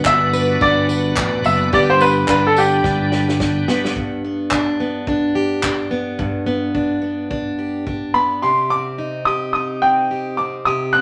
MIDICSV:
0, 0, Header, 1, 6, 480
1, 0, Start_track
1, 0, Key_signature, 1, "major"
1, 0, Tempo, 558659
1, 1484, Time_signature, 4, 2, 24, 8
1, 9464, End_track
2, 0, Start_track
2, 0, Title_t, "Upright piano"
2, 0, Program_c, 0, 0
2, 54, Note_on_c, 0, 76, 91
2, 532, Note_on_c, 0, 74, 87
2, 544, Note_off_c, 0, 76, 0
2, 1213, Note_off_c, 0, 74, 0
2, 1251, Note_on_c, 0, 76, 85
2, 1471, Note_off_c, 0, 76, 0
2, 1493, Note_on_c, 0, 74, 83
2, 1536, Note_off_c, 0, 74, 0
2, 1631, Note_on_c, 0, 72, 81
2, 1728, Note_off_c, 0, 72, 0
2, 1731, Note_on_c, 0, 71, 89
2, 1961, Note_off_c, 0, 71, 0
2, 1974, Note_on_c, 0, 71, 85
2, 2102, Note_off_c, 0, 71, 0
2, 2119, Note_on_c, 0, 69, 77
2, 2211, Note_off_c, 0, 69, 0
2, 2217, Note_on_c, 0, 67, 69
2, 2893, Note_off_c, 0, 67, 0
2, 6995, Note_on_c, 0, 83, 69
2, 7237, Note_on_c, 0, 84, 69
2, 7246, Note_off_c, 0, 83, 0
2, 7478, Note_on_c, 0, 86, 87
2, 7488, Note_off_c, 0, 84, 0
2, 7951, Note_on_c, 0, 87, 68
2, 7977, Note_off_c, 0, 86, 0
2, 8176, Note_off_c, 0, 87, 0
2, 8189, Note_on_c, 0, 87, 65
2, 8421, Note_off_c, 0, 87, 0
2, 8436, Note_on_c, 0, 79, 83
2, 8912, Note_on_c, 0, 86, 72
2, 8938, Note_off_c, 0, 79, 0
2, 8968, Note_off_c, 0, 86, 0
2, 9154, Note_on_c, 0, 87, 68
2, 9389, Note_on_c, 0, 90, 98
2, 9410, Note_off_c, 0, 87, 0
2, 9464, Note_off_c, 0, 90, 0
2, 9464, End_track
3, 0, Start_track
3, 0, Title_t, "Steel-string acoustic guitar"
3, 0, Program_c, 1, 25
3, 0, Note_on_c, 1, 43, 82
3, 0, Note_on_c, 1, 59, 61
3, 0, Note_on_c, 1, 71, 76
3, 49, Note_on_c, 1, 62, 60
3, 284, Note_off_c, 1, 71, 0
3, 287, Note_on_c, 1, 71, 66
3, 523, Note_off_c, 1, 62, 0
3, 526, Note_on_c, 1, 62, 66
3, 760, Note_off_c, 1, 71, 0
3, 763, Note_on_c, 1, 71, 66
3, 997, Note_off_c, 1, 62, 0
3, 1001, Note_on_c, 1, 62, 59
3, 1238, Note_off_c, 1, 59, 0
3, 1241, Note_on_c, 1, 59, 60
3, 1474, Note_off_c, 1, 43, 0
3, 1484, Note_on_c, 1, 43, 87
3, 1486, Note_off_c, 1, 71, 0
3, 1489, Note_on_c, 1, 67, 73
3, 1720, Note_off_c, 1, 59, 0
3, 1724, Note_on_c, 1, 59, 56
3, 1962, Note_off_c, 1, 62, 0
3, 1966, Note_on_c, 1, 62, 65
3, 2205, Note_off_c, 1, 67, 0
3, 2209, Note_on_c, 1, 67, 62
3, 2444, Note_off_c, 1, 62, 0
3, 2448, Note_on_c, 1, 62, 63
3, 2679, Note_off_c, 1, 67, 0
3, 2682, Note_on_c, 1, 67, 65
3, 2924, Note_off_c, 1, 62, 0
3, 2927, Note_on_c, 1, 62, 57
3, 3162, Note_off_c, 1, 59, 0
3, 3165, Note_on_c, 1, 59, 63
3, 3391, Note_off_c, 1, 43, 0
3, 3401, Note_on_c, 1, 43, 77
3, 3644, Note_off_c, 1, 59, 0
3, 3648, Note_on_c, 1, 59, 52
3, 3879, Note_off_c, 1, 62, 0
3, 3882, Note_on_c, 1, 62, 56
3, 4115, Note_off_c, 1, 59, 0
3, 4126, Note_on_c, 1, 59, 51
3, 4356, Note_off_c, 1, 62, 0
3, 4366, Note_on_c, 1, 62, 62
3, 4596, Note_off_c, 1, 67, 0
3, 4600, Note_on_c, 1, 67, 59
3, 4832, Note_off_c, 1, 62, 0
3, 4843, Note_on_c, 1, 62, 51
3, 5067, Note_off_c, 1, 59, 0
3, 5077, Note_on_c, 1, 59, 51
3, 5306, Note_off_c, 1, 43, 0
3, 5316, Note_on_c, 1, 43, 81
3, 5544, Note_off_c, 1, 59, 0
3, 5554, Note_on_c, 1, 59, 57
3, 5785, Note_off_c, 1, 62, 0
3, 5795, Note_on_c, 1, 62, 51
3, 6019, Note_off_c, 1, 59, 0
3, 6029, Note_on_c, 1, 59, 50
3, 6266, Note_off_c, 1, 62, 0
3, 6276, Note_on_c, 1, 62, 58
3, 6515, Note_off_c, 1, 67, 0
3, 6518, Note_on_c, 1, 67, 55
3, 6751, Note_off_c, 1, 62, 0
3, 6762, Note_on_c, 1, 62, 51
3, 6986, Note_off_c, 1, 59, 0
3, 6996, Note_on_c, 1, 59, 49
3, 7239, Note_on_c, 1, 48, 65
3, 7240, Note_off_c, 1, 67, 0
3, 7241, Note_off_c, 1, 43, 0
3, 7244, Note_on_c, 1, 67, 51
3, 7297, Note_off_c, 1, 59, 0
3, 7300, Note_off_c, 1, 62, 0
3, 7477, Note_on_c, 1, 60, 43
3, 7719, Note_on_c, 1, 63, 44
3, 7957, Note_off_c, 1, 67, 0
3, 7961, Note_on_c, 1, 67, 47
3, 8194, Note_off_c, 1, 63, 0
3, 8204, Note_on_c, 1, 63, 50
3, 8430, Note_off_c, 1, 60, 0
3, 8440, Note_on_c, 1, 60, 45
3, 8682, Note_off_c, 1, 67, 0
3, 8685, Note_on_c, 1, 67, 48
3, 8913, Note_off_c, 1, 60, 0
3, 8924, Note_on_c, 1, 60, 46
3, 9149, Note_off_c, 1, 48, 0
3, 9159, Note_on_c, 1, 48, 65
3, 9162, Note_off_c, 1, 67, 0
3, 9166, Note_on_c, 1, 67, 54
3, 9395, Note_off_c, 1, 60, 0
3, 9405, Note_on_c, 1, 60, 44
3, 9464, Note_off_c, 1, 48, 0
3, 9464, Note_off_c, 1, 60, 0
3, 9464, Note_off_c, 1, 63, 0
3, 9464, Note_off_c, 1, 67, 0
3, 9464, End_track
4, 0, Start_track
4, 0, Title_t, "Tonewheel organ"
4, 0, Program_c, 2, 16
4, 0, Note_on_c, 2, 59, 65
4, 0, Note_on_c, 2, 62, 75
4, 0, Note_on_c, 2, 66, 68
4, 1451, Note_off_c, 2, 66, 0
4, 1466, Note_off_c, 2, 62, 0
4, 1487, Note_on_c, 2, 55, 71
4, 1487, Note_on_c, 2, 62, 79
4, 3365, Note_off_c, 2, 59, 0
4, 3381, Note_off_c, 2, 55, 0
4, 3381, Note_off_c, 2, 62, 0
4, 9464, End_track
5, 0, Start_track
5, 0, Title_t, "Fretless electric bass"
5, 0, Program_c, 3, 35
5, 44, Note_on_c, 3, 31, 101
5, 491, Note_off_c, 3, 31, 0
5, 524, Note_on_c, 3, 31, 93
5, 970, Note_off_c, 3, 31, 0
5, 1004, Note_on_c, 3, 33, 91
5, 1225, Note_off_c, 3, 33, 0
5, 1240, Note_on_c, 3, 30, 88
5, 1462, Note_off_c, 3, 30, 0
5, 1485, Note_on_c, 3, 31, 113
5, 1928, Note_off_c, 3, 31, 0
5, 1962, Note_on_c, 3, 31, 94
5, 2406, Note_off_c, 3, 31, 0
5, 2441, Note_on_c, 3, 31, 97
5, 3124, Note_off_c, 3, 31, 0
5, 9464, End_track
6, 0, Start_track
6, 0, Title_t, "Drums"
6, 43, Note_on_c, 9, 39, 99
6, 46, Note_on_c, 9, 36, 102
6, 129, Note_off_c, 9, 39, 0
6, 132, Note_off_c, 9, 36, 0
6, 287, Note_on_c, 9, 54, 71
6, 373, Note_off_c, 9, 54, 0
6, 525, Note_on_c, 9, 36, 125
6, 611, Note_off_c, 9, 36, 0
6, 766, Note_on_c, 9, 54, 69
6, 852, Note_off_c, 9, 54, 0
6, 1001, Note_on_c, 9, 39, 107
6, 1004, Note_on_c, 9, 36, 112
6, 1087, Note_off_c, 9, 39, 0
6, 1090, Note_off_c, 9, 36, 0
6, 1240, Note_on_c, 9, 54, 57
6, 1326, Note_off_c, 9, 54, 0
6, 1485, Note_on_c, 9, 36, 127
6, 1571, Note_off_c, 9, 36, 0
6, 1723, Note_on_c, 9, 54, 66
6, 1809, Note_off_c, 9, 54, 0
6, 1960, Note_on_c, 9, 39, 98
6, 1961, Note_on_c, 9, 36, 104
6, 2046, Note_off_c, 9, 39, 0
6, 2047, Note_off_c, 9, 36, 0
6, 2204, Note_on_c, 9, 54, 76
6, 2290, Note_off_c, 9, 54, 0
6, 2441, Note_on_c, 9, 36, 116
6, 2442, Note_on_c, 9, 38, 57
6, 2527, Note_off_c, 9, 36, 0
6, 2528, Note_off_c, 9, 38, 0
6, 2679, Note_on_c, 9, 38, 73
6, 2765, Note_off_c, 9, 38, 0
6, 2823, Note_on_c, 9, 38, 67
6, 2909, Note_off_c, 9, 38, 0
6, 2922, Note_on_c, 9, 36, 109
6, 2923, Note_on_c, 9, 38, 84
6, 3008, Note_off_c, 9, 36, 0
6, 3009, Note_off_c, 9, 38, 0
6, 3163, Note_on_c, 9, 38, 102
6, 3249, Note_off_c, 9, 38, 0
6, 3305, Note_on_c, 9, 38, 85
6, 3391, Note_off_c, 9, 38, 0
6, 3401, Note_on_c, 9, 36, 105
6, 3487, Note_off_c, 9, 36, 0
6, 3875, Note_on_c, 9, 39, 95
6, 3878, Note_on_c, 9, 36, 96
6, 3961, Note_off_c, 9, 39, 0
6, 3964, Note_off_c, 9, 36, 0
6, 4358, Note_on_c, 9, 36, 110
6, 4444, Note_off_c, 9, 36, 0
6, 4839, Note_on_c, 9, 39, 94
6, 4840, Note_on_c, 9, 36, 90
6, 4925, Note_off_c, 9, 36, 0
6, 4925, Note_off_c, 9, 39, 0
6, 5319, Note_on_c, 9, 36, 108
6, 5404, Note_off_c, 9, 36, 0
6, 5797, Note_on_c, 9, 36, 92
6, 5883, Note_off_c, 9, 36, 0
6, 6279, Note_on_c, 9, 36, 94
6, 6365, Note_off_c, 9, 36, 0
6, 6759, Note_on_c, 9, 36, 92
6, 6845, Note_off_c, 9, 36, 0
6, 9464, End_track
0, 0, End_of_file